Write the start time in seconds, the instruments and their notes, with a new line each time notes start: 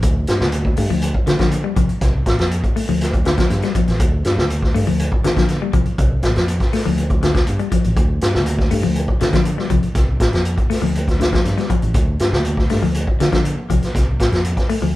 0.02 fingered electric bass D2, kick, closed hi-hat
0.27 fingered electric bass G2, snare, closed hi-hat
0.40 fingered electric bass D2, snare
0.52 closed hi-hat
0.65 kick
0.77 fingered electric bass G2, clean electric guitar A3, open hi-hat
0.90 fingered electric bass D2, clean electric guitar F3
1.02 closed hi-hat
1.14 kick
1.27 fingered electric bass D3, clean electric guitar D3, snare, closed hi-hat
1.39 fingered electric bass D3, clean electric guitar F3, kick, snare, closed hi-hat
1.51 closed hi-hat
1.64 clean electric guitar G3
1.76 fingered electric bass C2, clean electric guitar F3, kick, closed hi-hat
1.89 closed hi-hat
2.01 fingered electric bass C2, kick, snare, closed hi-hat
2.26 fingered electric bass A1, kick, snare, closed hi-hat
2.39 fingered electric bass F2, snare, closed hi-hat
2.51 closed hi-hat
2.64 kick, closed hi-hat
2.76 clean electric guitar A3, open hi-hat
2.89 fingered electric bass D2, clean electric guitar F3
3.01 snare, closed hi-hat
3.13 kick, closed hi-hat
3.25 clean electric guitar D3, snare, closed hi-hat
3.38 clean electric guitar F3, kick, snare, closed hi-hat
3.50 fingered electric bass G2, snare, closed hi-hat
3.62 clean electric guitar G3, snare, closed hi-hat
3.75 clean electric guitar F3, muted fingered electric bass stroke, kick, closed hi-hat
3.88 fingered electric bass A1, snare, closed hi-hat
4.00 fingered electric bass D2, kick, closed hi-hat
4.25 fingered electric bass G2, snare, closed hi-hat
4.38 fingered electric bass D2, snare
4.50 closed hi-hat
4.62 kick, snare
4.75 fingered electric bass G2, clean electric guitar A3, open hi-hat
4.87 fingered electric bass D2, clean electric guitar F3
5.00 closed hi-hat
5.12 kick
5.24 clean electric guitar D3, fingered electric bass D3, snare, closed hi-hat
5.37 fingered electric bass D3, clean electric guitar F3, kick, snare, closed hi-hat
5.48 snare, closed hi-hat
5.62 clean electric guitar G3
5.73 fingered electric bass C2, clean electric guitar F3, kick, closed hi-hat
5.86 closed hi-hat
5.98 fingered electric bass C2, kick, closed hi-hat
6.23 fingered electric bass A1, kick, snare, closed hi-hat
6.36 fingered electric bass F2, snare, closed hi-hat
6.48 closed hi-hat
6.60 kick, snare, closed hi-hat
6.73 clean electric guitar A3, snare, open hi-hat
6.86 fingered electric bass D2, clean electric guitar F3
6.98 closed hi-hat
7.10 kick, closed hi-hat
7.23 clean electric guitar D3, snare, closed hi-hat
7.35 muted clean electric guitar stroke, kick, snare, closed hi-hat
7.47 fingered electric bass G2, closed hi-hat
7.59 clean electric guitar G3, closed hi-hat
7.72 clean electric guitar F3, muted fingered electric bass stroke, kick, closed hi-hat
7.84 fingered electric bass A1, closed hi-hat
7.96 fingered electric bass D2, kick, closed hi-hat
8.21 fingered electric bass G2, snare, closed hi-hat
8.35 fingered electric bass D2, snare
8.46 closed hi-hat
8.59 kick, snare
8.71 fingered electric bass G2, clean electric guitar A3, open hi-hat
8.83 fingered electric bass D2, clean electric guitar F3
8.96 closed hi-hat
9.08 kick
9.20 clean electric guitar D3, fingered electric bass D3, snare, closed hi-hat
9.33 fingered electric bass D3, clean electric guitar F3, kick, snare, closed hi-hat
9.45 closed hi-hat
9.58 clean electric guitar G3, snare
9.70 fingered electric bass C2, clean electric guitar F3, kick, closed hi-hat
9.83 closed hi-hat
9.95 fingered electric bass C2, kick, snare, closed hi-hat
10.20 fingered electric bass A1, kick, snare, closed hi-hat
10.33 fingered electric bass F2, snare, closed hi-hat
10.45 closed hi-hat
10.58 kick, closed hi-hat
10.70 clean electric guitar A3, snare, open hi-hat
10.82 fingered electric bass D2, clean electric guitar F3
10.95 closed hi-hat
11.08 kick, snare, closed hi-hat
11.20 clean electric guitar D3, snare, closed hi-hat
11.33 clean electric guitar F3, kick, snare, closed hi-hat
11.45 fingered electric bass G2, snare, closed hi-hat
11.58 clean electric guitar G3, snare, closed hi-hat
11.70 clean electric guitar F3, muted fingered electric bass stroke, kick, closed hi-hat
11.82 fingered electric bass A1, closed hi-hat
11.94 fingered electric bass D2, kick, closed hi-hat
12.19 fingered electric bass G2, snare, closed hi-hat
12.33 fingered electric bass D2, snare
12.45 closed hi-hat
12.57 kick, snare
12.69 fingered electric bass G2, clean electric guitar A3, snare, open hi-hat
12.83 fingered electric bass D2, clean electric guitar F3
12.95 closed hi-hat
13.07 kick
13.20 clean electric guitar D3, fingered electric bass D3, snare, closed hi-hat
13.32 fingered electric bass D3, clean electric guitar F3, kick, snare, closed hi-hat
13.45 closed hi-hat
13.70 fingered electric bass C2, clean electric guitar F3, kick, closed hi-hat
13.83 snare, closed hi-hat
13.95 fingered electric bass C2, kick, snare, closed hi-hat
14.20 fingered electric bass A1, kick, snare, closed hi-hat
14.32 fingered electric bass F2, snare, closed hi-hat
14.45 closed hi-hat
14.57 kick, snare, closed hi-hat
14.69 clean electric guitar A3, open hi-hat
14.82 fingered electric bass D2, clean electric guitar F3